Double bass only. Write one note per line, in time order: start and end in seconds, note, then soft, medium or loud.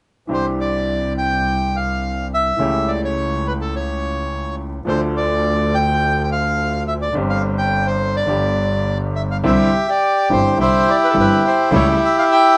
0.29 2.47 C2 medium
2.59 4.75 C#2 medium
4.86 7.02 D2 medium
7.14 8.23 G1 medium
8.28 9.38 G1 medium
9.44 9.68 C2 medium
10.30 10.54 G1 medium
10.57 10.82 C2 soft
11.16 11.40 G1 soft
11.72 11.96 C#2 medium